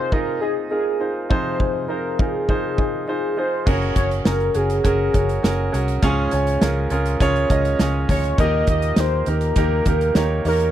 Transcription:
Already playing: grand piano C3 C4 D#4 F4 G#4 A#4 C5, soft synth lead C5
0.12 grand piano D#4 F4 G#4 D#5, soft synth lead A#4, kick
0.41 grand piano D#4 F4 G#4 D#5, soft synth lead G#4
0.70 grand piano D#4 F4 G#4 A#4, soft synth lead G#4
0.99 grand piano D#4 F4 G#4 C5
1.29 grand piano F2 C3 D#4 F4 G#4 C5, soft synth lead C5, kick
1.59 grand piano D#4 F4 G#4, kick
1.88 grand piano D#4 F4 G#4 C5, soft synth lead A#4
2.19 grand piano D#4 F4 G#4 A#4, soft synth lead G#4, kick
2.49 grand piano D#4 F4 G#4 C5, kick
2.78 grand piano D#4 F4 G#4 C5, kick
3.08 grand piano D#4 F4 G#4 C5
3.37 grand piano D#4 F4 G#4 C5, soft synth lead C5
3.66 fingered electric bass F#1, grand piano C#3 C#4 F#4 G#4 A#4, soft synth lead C#5, kick, crash
3.82 closed hi-hat
3.95 fingered electric bass F#1, grand piano C#4 F#4 G#4 A#4, soft synth lead C#5, kick, closed hi-hat
4.11 closed hi-hat
4.25 fingered electric bass F#1, grand piano C#4 F#4 G#4 C#5, soft synth lead A#4, snare, closed hi-hat
4.40 closed hi-hat
4.54 fingered electric bass F#1, grand piano C#4 F#4 G#4 A#4, soft synth lead G#4, closed hi-hat
4.70 closed hi-hat
4.84 fingered electric bass F#1, grand piano C#4 F#4 G#4 A#4, kick, closed hi-hat
5.13 fingered electric bass F#1, grand piano C#4 F#4 G#4 C#5, kick, closed hi-hat
5.29 closed hi-hat
5.43 fingered electric bass F#1, grand piano C#4 F#4 G#4 A#4, snare, closed hi-hat
5.72 fingered electric bass C2, grand piano C#4 F#4 G#4 A#4, closed hi-hat
5.88 closed hi-hat
6.02 fingered electric bass C#2, grand piano G#2 C#4 F4 G#4 C#5, kick, closed hi-hat
6.31 fingered electric bass C#2, grand piano C#4 F4 G#4 C#5, closed hi-hat
6.47 closed hi-hat
6.61 fingered electric bass C#2, grand piano C#4 F4 G#4 A#4, snare, closed hi-hat
6.90 fingered electric bass C#2, grand piano C#4 F4 G#4 A#4, closed hi-hat
7.06 closed hi-hat
7.20 fingered electric bass C#2, grand piano C#4 F4 G#4 C#5, kick, closed hi-hat
7.36 closed hi-hat
7.50 fingered electric bass C#2, grand piano C#4 F4 G#4 D#5, kick, closed hi-hat
7.65 closed hi-hat
7.79 fingered electric bass C#2, grand piano C#4 F4 G#4 C#5, snare, closed hi-hat
8.09 fingered electric bass D2, grand piano C#4 F4 G#4 C#5, soft synth lead C#5, kick, snare, open hi-hat
8.24 closed hi-hat
8.38 fingered electric bass D#2, grand piano A#2 A#3 D#4 G4 A#4, soft synth lead D#5, kick, closed hi-hat
8.67 fingered electric bass D#2, grand piano A#3 D#4 G4 A#4, soft synth lead D#5, kick, closed hi-hat
8.82 closed hi-hat
8.96 fingered electric bass D#2, grand piano A#3 D#4 G4 A#4, soft synth lead C5, snare, closed hi-hat
9.26 fingered electric bass D#2, grand piano A#3 D#4 G4 A#4, soft synth lead A#4, closed hi-hat
9.41 closed hi-hat
9.56 fingered electric bass D#2, grand piano A#3 D#4 G4 A#4, kick, closed hi-hat
9.86 fingered electric bass D#2, grand piano A#3 D#4 G4 A#4, kick, closed hi-hat
10.01 closed hi-hat
10.15 fingered electric bass D#2, grand piano A#3 D#4 G4 C#5, snare, closed hi-hat
10.45 fingered electric bass E2, grand piano A#3 D#4 G4 C#5, soft synth lead A#4, open hi-hat
10.59 closed hi-hat

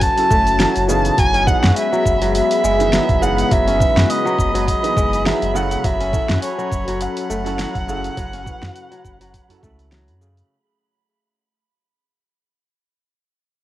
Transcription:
Already playing: kora C#3 F#3 C#4 F#4, felt piano F#3 C#4 E4 B4, analog synth pad F#3 C#4 F#4 A4
0.01 kamancheh A5, kick, open hi-hat, shaker
0.16 felt piano F#3 C#4 E4 A4, open hi-hat, shaker
0.31 sub bass F#1, kora A3, kick, shaker
0.47 open hi-hat, shaker
0.59 felt piano F#3 C#4 E4 A4, kora F#3, snare, open hi-hat, shaker
0.76 sub bass F#1, open hi-hat, shaker
0.88 kora C#3, felt piano E3 B3 D#4 G#4, kamancheh A5, shaker
1.05 open hi-hat, shaker
1.18 sub bass F#1, kora F#3, analog synth pad G#3 B3 F#4 G#4, kamancheh G#5, synth texture B5, kick, open hi-hat, shaker
1.34 kora C#4, open hi-hat, shaker
1.46 felt piano E3 B3 D#4 G#4, kamancheh F#5, kick, shaker
1.63 sub bass F#2, kora F#4, snare, open hi-hat, shaker
1.76 kamancheh E5, open hi-hat, shaker
1.92 kora F#3, shaker
2.06 sub bass F#1, kick, shaker
2.22 kora F#3, open hi-hat, shaker
2.35 kamancheh E5, open hi-hat, shaker
2.51 open hi-hat, shaker
2.64 sub bass F#1, kora G#3, shaker
2.79 felt piano D#3 E3 B3 G#4, open hi-hat, shaker
2.93 kora F#3, snare, open hi-hat, shaker
3.09 sub bass F#1, kick, open hi-hat, shaker
3.21 kora C#3, felt piano E3 B3 D#4 G#4, kamancheh F#5, shaker
3.38 open hi-hat, shaker
3.51 sub bass F#1, kora F#3, kamancheh E5, kick, open hi-hat, shaker
3.67 kora C#4, open hi-hat, shaker
3.78 felt piano E3 B3 D#4, kick, shaker
3.82 felt piano B4
3.96 sub bass F#2, kora F#4, snare, open hi-hat, shaker
4.09 kamancheh D#5, open hi-hat, shaker
4.25 kora F#3, shaker
4.39 sub bass F#1, kick, shaker
4.54 kora F#3, open hi-hat, shaker
4.68 kamancheh D#5, kick, open hi-hat, shaker
4.83 felt piano E3 B3 D#4 G#4, open hi-hat, shaker
4.97 sub bass F#1, kora G#3, kick, shaker
5.13 open hi-hat, shaker
5.25 felt piano E3 B3 D#4 G#4, kora F#3, kamancheh E5, snare, open hi-hat, shaker
5.42 sub bass F#1, open hi-hat, shaker
5.54 kora C#3, felt piano F#3 C#4 E4 A4, kamancheh F#5, shaker
5.71 open hi-hat, shaker
5.84 sub bass F#1, kora F#3, analog synth pad F#3 C#4 A4 G#5, kamancheh E5, kick, open hi-hat, shaker
6.00 kora C#4, open hi-hat, shaker
6.12 felt piano F#3 C#4 E4 A4, kick, shaker
6.29 sub bass F#2, kora F#4, snare, open hi-hat, shaker
6.42 kamancheh C#5, open hi-hat, shaker
6.58 kora F#3, shaker
6.71 sub bass F#1, kick, shaker
6.88 kora F#3, open hi-hat, shaker
7.01 kamancheh F#5, open hi-hat, shaker
7.17 open hi-hat, shaker
7.30 sub bass F#1, kora A3, shaker
7.45 felt piano F#3 C#4 E4 A4, open hi-hat, shaker
7.59 kora F#3, snare, open hi-hat, shaker
7.75 sub bass F#1, kick, open hi-hat, shaker
7.87 kora C#3, felt piano F#3 C#4 E4 A4, shaker
8.04 open hi-hat, shaker
8.17 sub bass F#1, kora F#3, analog synth pad F#4, kick, open hi-hat, shaker
8.33 kora C#4, open hi-hat, shaker
8.44 felt piano F#3 C#4 E4, kick, shaker
8.48 felt piano B4
8.62 sub bass F#2, kora F#4, snare, open hi-hat, udu, shaker
8.76 open hi-hat, shaker
8.91 kora F#3, open hi-hat, shaker
9.05 sub bass F#1, kick, shaker
9.21 kora F#3, open hi-hat, shaker
9.34 kick, open hi-hat, shaker
9.49 felt piano F#3 C#4 E4 A4, open hi-hat, udu, shaker
9.61 sub bass C#2, felt piano F#3 C#4 E4, kora A3, kick, shaker
9.65 felt piano A4
9.79 open hi-hat, shaker
9.92 kora F#3, snare, open hi-hat, shaker
10.08 sub bass F#2, open hi-hat, shaker
10.21 kora C#3, shaker
10.37 open hi-hat, shaker

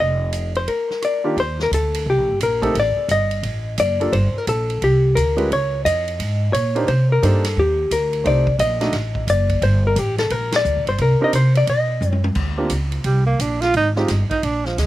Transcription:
Already playing: upright bass F1
0.00 hollow-body jazz guitar D#5
0.33 hi-hat pedal, ride
0.55 hollow-body jazz guitar C5, ride
0.68 hollow-body jazz guitar A#4, kick, ride
0.90 snare
1.02 hollow-body jazz guitar D5, cross-stick, hi-hat pedal, ride
1.24 grand piano D#3 A#3 D4 F4 G4
1.37 upright bass D#2, hollow-body jazz guitar C5, kick, ride
1.59 hollow-body jazz guitar A#4, snare
1.71 upright bass D2, hollow-body jazz guitar A4, kick, hi-hat pedal, ride
1.94 ride
2.06 upright bass C2, hollow-body jazz guitar G4, kick
2.18 upright bass A#1
2.29 upright bass G1
2.40 upright bass A#1, hollow-body jazz guitar A#4, kick, hi-hat pedal, ride
2.62 grand piano A3 C4 D#4 G4 A4, kick, ride
2.75 upright bass A1, kick, ride
2.80 hollow-body jazz guitar D5
2.97 muted upright bass stroke
3.08 upright bass G1, hollow-body jazz guitar D#5, kick, hi-hat pedal, ride
3.31 ride
3.43 upright bass A1, kick, ride
3.78 upright bass F#1, hollow-body jazz guitar D5, kick, hi-hat pedal, ride
4.00 grand piano A#3 D4 F4 G4 A4, ride
4.12 upright bass G1, hollow-body jazz guitar C5, kick, ride
4.34 muted upright bass stroke
4.38 hollow-body jazz guitar A#4
4.47 upright bass A#1, hollow-body jazz guitar A4, kick, hi-hat pedal, ride
4.70 ride
4.82 upright bass C2, hollow-body jazz guitar G4, kick, ride
5.15 upright bass D2, hollow-body jazz guitar A#4, kick, hi-hat pedal, ride
5.37 grand piano G#3 C#4 F4 G4 B4, ride
5.50 upright bass C#2, hollow-body jazz guitar C#5, kick, ride
5.85 upright bass F2, hollow-body jazz guitar D#5, kick, hi-hat pedal, ride
6.08 ride
6.19 upright bass G#2, kick, ride
6.53 upright bass A#2, hollow-body jazz guitar C#5, kick, hi-hat pedal, ride
6.75 grand piano A#3 D4 D#4 G4 C5, ride
6.88 upright bass C3, hollow-body jazz guitar C5, kick, ride
7.12 hollow-body jazz guitar A#4
7.22 upright bass G2, grand piano A#3 D4 D#4 G4 C5, hollow-body jazz guitar A4, kick, hi-hat pedal, ride
7.44 snare, ride
7.57 upright bass D#2, hollow-body jazz guitar G4, kick
7.91 upright bass D2, hollow-body jazz guitar A#4, kick, hi-hat pedal, ride
8.13 ride
8.24 upright bass C2, grand piano A3 C4 D#4 G4 C5, hollow-body jazz guitar D5, kick, ride
8.47 kick
8.59 upright bass A#1, hollow-body jazz guitar D#5, kick, hi-hat pedal, ride
8.81 grand piano A3 D4 D#4 F#4 D#5, snare, ride
8.92 upright bass A1, kick, snare, ride
9.15 kick
9.27 upright bass F#1, hollow-body jazz guitar D5, kick, hi-hat pedal, ride
9.49 kick, ride
9.62 upright bass G1, hollow-body jazz guitar C5, kick, ride
9.87 hollow-body jazz guitar A#4
9.96 upright bass A1, hollow-body jazz guitar G4, kick, hi-hat pedal, ride
10.18 hollow-body jazz guitar A4, snare, ride
10.30 upright bass A#1, hollow-body jazz guitar A#4, kick, ride
10.52 hollow-body jazz guitar D5, snare, ride
10.65 upright bass D2, hi-hat pedal
10.76 upright bass A#1
10.87 upright bass G1, hollow-body jazz guitar C5, ride
10.98 upright bass C2, hollow-body jazz guitar A#4, kick, ride
11.20 grand piano C4 D4 D#4 G4 A#4, hollow-body jazz guitar D#5, muted upright bass stroke
11.33 upright bass C3, hollow-body jazz guitar C5, kick, hi-hat pedal, ride
11.55 hollow-body jazz guitar D5, ride
11.67 upright bass B2, hollow-body jazz guitar D#5, kick, ride
12.01 upright bass F#2, hi-hat pedal, high tom
12.12 high tom
12.24 high tom
12.35 upright bass D2, kick, crash
12.57 grand piano A#3 C4 D4 F4 G4
12.70 upright bass C#2, kick, hi-hat pedal, ride
12.92 ride
13.04 upright bass C2, tenor saxophone G3, kick, ride
13.26 tenor saxophone A#3
13.39 upright bass A#1, tenor saxophone D4, kick, hi-hat pedal, ride
13.61 tenor saxophone F4, snare, ride
13.74 upright bass G#1, tenor saxophone D#4, kick, ride
13.96 grand piano G#3 C4 D#4 F4 G4, snare
14.08 upright bass G1, kick, snare, hi-hat pedal, ride
14.30 tenor saxophone D#4, kick, ride
14.43 upright bass A#1, tenor saxophone D4, kick, ride
14.65 tenor saxophone F3, snare
14.78 upright bass D2, tenor saxophone G#3, kick, snare, hi-hat pedal, ride

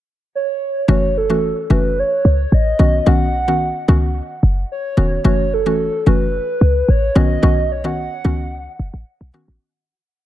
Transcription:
0.35 soft synth lead C#5
0.88 808-style bass F#1, synth pluck E3 A3 C#4 F#4, soft synth lead C#5
1.17 soft synth lead A4
1.30 synth pluck E3 A3 C#4 F#4
1.70 808-style bass F#1, synth pluck E3 A3 C#4 F#4, soft synth lead B4
1.99 soft synth lead C#5
2.25 808-style bass C#2
2.52 808-style bass A1, soft synth lead D#5
2.79 808-style bass B1, synth pluck D#3 B3 C#4 F#4
3.06 808-style bass B1, synth pluck D#3 B3 C#4 F#4, soft synth lead F#5
3.48 synth pluck D#3 B3 C#4 F#4
3.88 808-style bass C#2, synth pluck D#3 B3 C#4 F#4
4.43 808-style bass F#1
4.72 soft synth lead C#5
4.97 808-style bass E1, synth pluck D#3 B3 C#4 F#4
5.24 808-style bass F#1, synth pluck E3 A3 C#4 F#4, soft synth lead C#5
5.54 soft synth lead A4
5.66 synth pluck E3 A3 C#4 F#4
6.06 808-style bass F#1, synth pluck E3 A3 C#4 F#4, soft synth lead B4
6.61 808-style bass C#2
6.88 808-style bass A1, soft synth lead C#5
7.15 808-style bass B1, synth pluck D#3 B3 C#4 F#4, soft synth lead D#5
7.43 808-style bass B1, synth pluck D#3 B3 C#4 F#4
7.72 soft synth lead C#5
7.84 synth pluck D#3 B3 C#4 F#4, soft synth lead F#5
8.24 808-style bass C#2, synth pluck D#3 B3 C#4 F#4
8.79 808-style bass F#1
8.94 808-style bass A1
9.21 808-style bass B1
9.34 synth pluck D#3 B3 C#4 F#4
9.48 808-style bass A1

